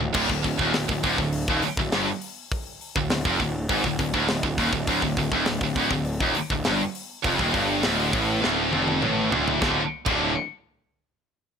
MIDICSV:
0, 0, Header, 1, 8, 480
1, 0, Start_track
1, 0, Key_signature, -1, "minor"
1, 0, Tempo, 591716
1, 122, Time_signature, 4, 2, 24, 8
1, 9407, End_track
2, 0, Start_track
2, 0, Title_t, "Distorted electric guitar"
2, 0, Program_c, 0, 30
2, 0, Note_on_c, 0, 38, 79
2, 108, Note_off_c, 0, 38, 0
2, 117, Note_on_c, 0, 38, 98
2, 233, Note_off_c, 0, 38, 0
2, 256, Note_on_c, 0, 38, 74
2, 361, Note_off_c, 0, 38, 0
2, 371, Note_on_c, 0, 38, 75
2, 487, Note_off_c, 0, 38, 0
2, 495, Note_on_c, 0, 39, 109
2, 601, Note_off_c, 0, 39, 0
2, 620, Note_on_c, 0, 38, 71
2, 731, Note_off_c, 0, 38, 0
2, 746, Note_on_c, 0, 38, 72
2, 854, Note_off_c, 0, 38, 0
2, 867, Note_on_c, 0, 38, 98
2, 967, Note_off_c, 0, 38, 0
2, 1000, Note_on_c, 0, 38, 76
2, 1173, Note_off_c, 0, 38, 0
2, 1223, Note_on_c, 0, 39, 103
2, 1326, Note_off_c, 0, 39, 0
2, 1462, Note_on_c, 0, 38, 70
2, 1572, Note_off_c, 0, 38, 0
2, 1576, Note_on_c, 0, 43, 107
2, 1682, Note_off_c, 0, 43, 0
2, 2408, Note_on_c, 0, 38, 75
2, 2519, Note_off_c, 0, 38, 0
2, 2529, Note_on_c, 0, 38, 70
2, 2637, Note_off_c, 0, 38, 0
2, 2640, Note_on_c, 0, 41, 93
2, 2754, Note_off_c, 0, 41, 0
2, 2772, Note_on_c, 0, 38, 74
2, 2959, Note_off_c, 0, 38, 0
2, 2999, Note_on_c, 0, 44, 105
2, 3113, Note_off_c, 0, 44, 0
2, 3132, Note_on_c, 0, 38, 76
2, 3235, Note_off_c, 0, 38, 0
2, 3245, Note_on_c, 0, 38, 73
2, 3358, Note_off_c, 0, 38, 0
2, 3368, Note_on_c, 0, 38, 106
2, 3475, Note_off_c, 0, 38, 0
2, 3485, Note_on_c, 0, 38, 73
2, 3583, Note_off_c, 0, 38, 0
2, 3593, Note_on_c, 0, 38, 75
2, 3712, Note_off_c, 0, 38, 0
2, 3715, Note_on_c, 0, 39, 107
2, 3831, Note_off_c, 0, 39, 0
2, 3836, Note_on_c, 0, 38, 75
2, 3948, Note_off_c, 0, 38, 0
2, 3957, Note_on_c, 0, 38, 106
2, 4072, Note_off_c, 0, 38, 0
2, 4083, Note_on_c, 0, 38, 72
2, 4192, Note_off_c, 0, 38, 0
2, 4202, Note_on_c, 0, 38, 80
2, 4312, Note_off_c, 0, 38, 0
2, 4315, Note_on_c, 0, 39, 97
2, 4431, Note_off_c, 0, 39, 0
2, 4436, Note_on_c, 0, 38, 73
2, 4540, Note_off_c, 0, 38, 0
2, 4549, Note_on_c, 0, 38, 76
2, 4658, Note_off_c, 0, 38, 0
2, 4668, Note_on_c, 0, 38, 106
2, 4787, Note_off_c, 0, 38, 0
2, 4799, Note_on_c, 0, 38, 78
2, 4992, Note_off_c, 0, 38, 0
2, 5037, Note_on_c, 0, 39, 99
2, 5152, Note_off_c, 0, 39, 0
2, 5295, Note_on_c, 0, 38, 70
2, 5408, Note_off_c, 0, 38, 0
2, 5412, Note_on_c, 0, 43, 107
2, 5519, Note_off_c, 0, 43, 0
2, 5893, Note_on_c, 0, 41, 102
2, 5999, Note_off_c, 0, 41, 0
2, 6019, Note_on_c, 0, 39, 101
2, 6122, Note_off_c, 0, 39, 0
2, 6135, Note_on_c, 0, 43, 101
2, 6360, Note_off_c, 0, 43, 0
2, 6373, Note_on_c, 0, 38, 105
2, 6600, Note_off_c, 0, 38, 0
2, 6604, Note_on_c, 0, 45, 107
2, 6833, Note_off_c, 0, 45, 0
2, 6836, Note_on_c, 0, 38, 107
2, 7071, Note_off_c, 0, 38, 0
2, 7084, Note_on_c, 0, 41, 97
2, 7315, Note_off_c, 0, 41, 0
2, 7325, Note_on_c, 0, 45, 102
2, 7554, Note_off_c, 0, 45, 0
2, 7557, Note_on_c, 0, 38, 109
2, 7781, Note_off_c, 0, 38, 0
2, 7791, Note_on_c, 0, 38, 98
2, 7793, Note_on_c, 0, 45, 90
2, 7797, Note_on_c, 0, 50, 95
2, 7797, Note_on_c, 0, 57, 108
2, 7800, Note_on_c, 0, 65, 99
2, 7940, Note_off_c, 0, 38, 0
2, 7941, Note_off_c, 0, 45, 0
2, 7944, Note_off_c, 0, 50, 0
2, 7944, Note_off_c, 0, 57, 0
2, 7945, Note_off_c, 0, 65, 0
2, 8160, Note_on_c, 0, 38, 92
2, 8163, Note_on_c, 0, 45, 93
2, 8167, Note_on_c, 0, 57, 112
2, 8170, Note_on_c, 0, 50, 103
2, 8171, Note_on_c, 0, 65, 111
2, 8353, Note_off_c, 0, 38, 0
2, 8355, Note_off_c, 0, 45, 0
2, 8357, Note_off_c, 0, 57, 0
2, 8358, Note_off_c, 0, 50, 0
2, 8359, Note_off_c, 0, 65, 0
2, 9407, End_track
3, 0, Start_track
3, 0, Title_t, "Distorted electric guitar"
3, 0, Program_c, 1, 30
3, 959, Note_on_c, 1, 38, 75
3, 1152, Note_off_c, 1, 38, 0
3, 9407, End_track
4, 0, Start_track
4, 0, Title_t, "Distorted electric guitar"
4, 0, Program_c, 2, 30
4, 966, Note_on_c, 2, 38, 70
4, 1156, Note_off_c, 2, 38, 0
4, 5973, Note_on_c, 2, 39, 100
4, 6100, Note_off_c, 2, 39, 0
4, 6336, Note_on_c, 2, 38, 105
4, 6581, Note_off_c, 2, 38, 0
4, 9407, End_track
5, 0, Start_track
5, 0, Title_t, "Picked electric bass"
5, 0, Program_c, 3, 34
5, 7, Note_on_c, 3, 26, 76
5, 116, Note_off_c, 3, 26, 0
5, 121, Note_on_c, 3, 26, 90
5, 233, Note_off_c, 3, 26, 0
5, 238, Note_on_c, 3, 26, 75
5, 351, Note_off_c, 3, 26, 0
5, 359, Note_on_c, 3, 26, 73
5, 470, Note_off_c, 3, 26, 0
5, 475, Note_on_c, 3, 27, 106
5, 590, Note_off_c, 3, 27, 0
5, 627, Note_on_c, 3, 26, 82
5, 714, Note_off_c, 3, 26, 0
5, 719, Note_on_c, 3, 26, 79
5, 832, Note_off_c, 3, 26, 0
5, 842, Note_on_c, 3, 26, 98
5, 954, Note_off_c, 3, 26, 0
5, 965, Note_on_c, 3, 26, 85
5, 1187, Note_off_c, 3, 26, 0
5, 1200, Note_on_c, 3, 27, 103
5, 1313, Note_off_c, 3, 27, 0
5, 1436, Note_on_c, 3, 26, 73
5, 1550, Note_off_c, 3, 26, 0
5, 1576, Note_on_c, 3, 31, 94
5, 1681, Note_off_c, 3, 31, 0
5, 2402, Note_on_c, 3, 26, 89
5, 2514, Note_off_c, 3, 26, 0
5, 2525, Note_on_c, 3, 26, 82
5, 2631, Note_off_c, 3, 26, 0
5, 2636, Note_on_c, 3, 29, 104
5, 2750, Note_off_c, 3, 29, 0
5, 2759, Note_on_c, 3, 26, 86
5, 2983, Note_off_c, 3, 26, 0
5, 2997, Note_on_c, 3, 32, 99
5, 3110, Note_off_c, 3, 32, 0
5, 3118, Note_on_c, 3, 26, 87
5, 3231, Note_off_c, 3, 26, 0
5, 3238, Note_on_c, 3, 26, 90
5, 3351, Note_off_c, 3, 26, 0
5, 3359, Note_on_c, 3, 26, 90
5, 3471, Note_off_c, 3, 26, 0
5, 3487, Note_on_c, 3, 26, 84
5, 3596, Note_off_c, 3, 26, 0
5, 3599, Note_on_c, 3, 26, 78
5, 3712, Note_off_c, 3, 26, 0
5, 3721, Note_on_c, 3, 27, 92
5, 3832, Note_off_c, 3, 27, 0
5, 3840, Note_on_c, 3, 26, 87
5, 3952, Note_off_c, 3, 26, 0
5, 3960, Note_on_c, 3, 26, 93
5, 4072, Note_off_c, 3, 26, 0
5, 4077, Note_on_c, 3, 26, 80
5, 4190, Note_off_c, 3, 26, 0
5, 4193, Note_on_c, 3, 26, 80
5, 4308, Note_off_c, 3, 26, 0
5, 4314, Note_on_c, 3, 27, 96
5, 4429, Note_off_c, 3, 27, 0
5, 4436, Note_on_c, 3, 26, 83
5, 4545, Note_off_c, 3, 26, 0
5, 4550, Note_on_c, 3, 26, 83
5, 4661, Note_off_c, 3, 26, 0
5, 4666, Note_on_c, 3, 26, 96
5, 4784, Note_off_c, 3, 26, 0
5, 4795, Note_on_c, 3, 26, 87
5, 5021, Note_off_c, 3, 26, 0
5, 5036, Note_on_c, 3, 27, 94
5, 5150, Note_off_c, 3, 27, 0
5, 5277, Note_on_c, 3, 26, 76
5, 5390, Note_off_c, 3, 26, 0
5, 5414, Note_on_c, 3, 31, 97
5, 5519, Note_off_c, 3, 31, 0
5, 5876, Note_on_c, 3, 29, 92
5, 5990, Note_off_c, 3, 29, 0
5, 5999, Note_on_c, 3, 27, 88
5, 6111, Note_off_c, 3, 27, 0
5, 6116, Note_on_c, 3, 31, 92
5, 6341, Note_off_c, 3, 31, 0
5, 6366, Note_on_c, 3, 26, 97
5, 6587, Note_off_c, 3, 26, 0
5, 6595, Note_on_c, 3, 33, 105
5, 6821, Note_off_c, 3, 33, 0
5, 6851, Note_on_c, 3, 26, 95
5, 7070, Note_off_c, 3, 26, 0
5, 7087, Note_on_c, 3, 29, 100
5, 7308, Note_off_c, 3, 29, 0
5, 7322, Note_on_c, 3, 33, 87
5, 7545, Note_off_c, 3, 33, 0
5, 7559, Note_on_c, 3, 26, 92
5, 7784, Note_off_c, 3, 26, 0
5, 7805, Note_on_c, 3, 26, 99
5, 7937, Note_off_c, 3, 26, 0
5, 8168, Note_on_c, 3, 26, 102
5, 8389, Note_off_c, 3, 26, 0
5, 9407, End_track
6, 0, Start_track
6, 0, Title_t, "Muted distorted electric guitar strokes"
6, 1353, Note_on_c, 9, 29, 60
6, 1434, Note_off_c, 9, 29, 0
6, 5184, Note_on_c, 9, 29, 62
6, 5265, Note_off_c, 9, 29, 0
6, 9407, End_track
7, 0, Start_track
7, 0, Title_t, "Muted picked electric bass strokes"
7, 1341, Note_on_c, 9, 29, 45
7, 1423, Note_off_c, 9, 29, 0
7, 5165, Note_on_c, 9, 29, 45
7, 5246, Note_off_c, 9, 29, 0
7, 9407, End_track
8, 0, Start_track
8, 0, Title_t, "Drums"
8, 113, Note_on_c, 9, 46, 96
8, 113, Note_on_c, 9, 49, 109
8, 119, Note_on_c, 9, 36, 116
8, 194, Note_off_c, 9, 46, 0
8, 194, Note_off_c, 9, 49, 0
8, 200, Note_off_c, 9, 36, 0
8, 239, Note_on_c, 9, 36, 89
8, 320, Note_off_c, 9, 36, 0
8, 360, Note_on_c, 9, 36, 82
8, 360, Note_on_c, 9, 46, 63
8, 441, Note_off_c, 9, 36, 0
8, 441, Note_off_c, 9, 46, 0
8, 480, Note_on_c, 9, 36, 81
8, 561, Note_off_c, 9, 36, 0
8, 598, Note_on_c, 9, 46, 89
8, 602, Note_on_c, 9, 38, 127
8, 679, Note_off_c, 9, 46, 0
8, 683, Note_off_c, 9, 38, 0
8, 722, Note_on_c, 9, 36, 99
8, 804, Note_off_c, 9, 36, 0
8, 840, Note_on_c, 9, 46, 69
8, 841, Note_on_c, 9, 36, 89
8, 921, Note_off_c, 9, 46, 0
8, 923, Note_off_c, 9, 36, 0
8, 960, Note_on_c, 9, 36, 82
8, 1041, Note_off_c, 9, 36, 0
8, 1075, Note_on_c, 9, 46, 89
8, 1156, Note_off_c, 9, 46, 0
8, 1200, Note_on_c, 9, 36, 112
8, 1281, Note_off_c, 9, 36, 0
8, 1316, Note_on_c, 9, 46, 68
8, 1397, Note_off_c, 9, 46, 0
8, 1439, Note_on_c, 9, 36, 102
8, 1520, Note_off_c, 9, 36, 0
8, 1557, Note_on_c, 9, 46, 86
8, 1561, Note_on_c, 9, 38, 116
8, 1638, Note_off_c, 9, 46, 0
8, 1642, Note_off_c, 9, 38, 0
8, 1797, Note_on_c, 9, 46, 64
8, 1878, Note_off_c, 9, 46, 0
8, 2041, Note_on_c, 9, 36, 110
8, 2043, Note_on_c, 9, 46, 76
8, 2122, Note_off_c, 9, 36, 0
8, 2124, Note_off_c, 9, 46, 0
8, 2280, Note_on_c, 9, 46, 60
8, 2361, Note_off_c, 9, 46, 0
8, 2399, Note_on_c, 9, 36, 96
8, 2480, Note_off_c, 9, 36, 0
8, 2514, Note_on_c, 9, 46, 90
8, 2518, Note_on_c, 9, 38, 124
8, 2595, Note_off_c, 9, 46, 0
8, 2599, Note_off_c, 9, 38, 0
8, 2638, Note_on_c, 9, 36, 111
8, 2719, Note_off_c, 9, 36, 0
8, 2755, Note_on_c, 9, 46, 59
8, 2757, Note_on_c, 9, 36, 93
8, 2836, Note_off_c, 9, 46, 0
8, 2838, Note_off_c, 9, 36, 0
8, 2993, Note_on_c, 9, 46, 87
8, 2996, Note_on_c, 9, 36, 118
8, 3074, Note_off_c, 9, 46, 0
8, 3077, Note_off_c, 9, 36, 0
8, 3116, Note_on_c, 9, 36, 90
8, 3197, Note_off_c, 9, 36, 0
8, 3237, Note_on_c, 9, 36, 91
8, 3238, Note_on_c, 9, 46, 62
8, 3318, Note_off_c, 9, 36, 0
8, 3319, Note_off_c, 9, 46, 0
8, 3357, Note_on_c, 9, 36, 81
8, 3438, Note_off_c, 9, 36, 0
8, 3473, Note_on_c, 9, 46, 85
8, 3477, Note_on_c, 9, 38, 115
8, 3555, Note_off_c, 9, 46, 0
8, 3559, Note_off_c, 9, 38, 0
8, 3595, Note_on_c, 9, 36, 90
8, 3677, Note_off_c, 9, 36, 0
8, 3715, Note_on_c, 9, 36, 87
8, 3716, Note_on_c, 9, 46, 67
8, 3796, Note_off_c, 9, 36, 0
8, 3797, Note_off_c, 9, 46, 0
8, 3834, Note_on_c, 9, 36, 98
8, 3915, Note_off_c, 9, 36, 0
8, 3950, Note_on_c, 9, 46, 90
8, 3954, Note_on_c, 9, 36, 98
8, 4031, Note_off_c, 9, 46, 0
8, 4035, Note_off_c, 9, 36, 0
8, 4075, Note_on_c, 9, 36, 83
8, 4156, Note_off_c, 9, 36, 0
8, 4192, Note_on_c, 9, 46, 66
8, 4194, Note_on_c, 9, 36, 86
8, 4273, Note_off_c, 9, 46, 0
8, 4275, Note_off_c, 9, 36, 0
8, 4313, Note_on_c, 9, 36, 85
8, 4394, Note_off_c, 9, 36, 0
8, 4426, Note_on_c, 9, 46, 94
8, 4430, Note_on_c, 9, 38, 126
8, 4508, Note_off_c, 9, 46, 0
8, 4512, Note_off_c, 9, 38, 0
8, 4551, Note_on_c, 9, 36, 89
8, 4632, Note_off_c, 9, 36, 0
8, 4670, Note_on_c, 9, 46, 66
8, 4672, Note_on_c, 9, 36, 84
8, 4751, Note_off_c, 9, 46, 0
8, 4753, Note_off_c, 9, 36, 0
8, 4791, Note_on_c, 9, 36, 88
8, 4872, Note_off_c, 9, 36, 0
8, 4905, Note_on_c, 9, 46, 91
8, 4986, Note_off_c, 9, 46, 0
8, 5033, Note_on_c, 9, 36, 101
8, 5114, Note_off_c, 9, 36, 0
8, 5148, Note_on_c, 9, 46, 67
8, 5229, Note_off_c, 9, 46, 0
8, 5274, Note_on_c, 9, 36, 92
8, 5355, Note_off_c, 9, 36, 0
8, 5390, Note_on_c, 9, 46, 82
8, 5394, Note_on_c, 9, 38, 115
8, 5471, Note_off_c, 9, 46, 0
8, 5475, Note_off_c, 9, 38, 0
8, 5637, Note_on_c, 9, 46, 60
8, 5718, Note_off_c, 9, 46, 0
8, 5875, Note_on_c, 9, 46, 88
8, 5876, Note_on_c, 9, 36, 118
8, 5956, Note_off_c, 9, 46, 0
8, 5957, Note_off_c, 9, 36, 0
8, 5997, Note_on_c, 9, 36, 83
8, 6078, Note_off_c, 9, 36, 0
8, 6117, Note_on_c, 9, 36, 86
8, 6121, Note_on_c, 9, 46, 61
8, 6198, Note_off_c, 9, 36, 0
8, 6202, Note_off_c, 9, 46, 0
8, 6351, Note_on_c, 9, 46, 86
8, 6355, Note_on_c, 9, 38, 124
8, 6432, Note_off_c, 9, 46, 0
8, 6436, Note_off_c, 9, 38, 0
8, 6597, Note_on_c, 9, 36, 103
8, 6601, Note_on_c, 9, 46, 60
8, 6678, Note_off_c, 9, 36, 0
8, 6682, Note_off_c, 9, 46, 0
8, 6846, Note_on_c, 9, 38, 68
8, 6927, Note_off_c, 9, 38, 0
8, 7079, Note_on_c, 9, 48, 77
8, 7160, Note_off_c, 9, 48, 0
8, 7202, Note_on_c, 9, 48, 75
8, 7283, Note_off_c, 9, 48, 0
8, 7320, Note_on_c, 9, 47, 83
8, 7401, Note_off_c, 9, 47, 0
8, 7563, Note_on_c, 9, 43, 103
8, 7644, Note_off_c, 9, 43, 0
8, 7687, Note_on_c, 9, 43, 96
8, 7768, Note_off_c, 9, 43, 0
8, 7802, Note_on_c, 9, 36, 113
8, 7808, Note_on_c, 9, 38, 92
8, 7884, Note_off_c, 9, 36, 0
8, 7889, Note_off_c, 9, 38, 0
8, 8162, Note_on_c, 9, 36, 105
8, 8164, Note_on_c, 9, 49, 85
8, 8244, Note_off_c, 9, 36, 0
8, 8245, Note_off_c, 9, 49, 0
8, 9407, End_track
0, 0, End_of_file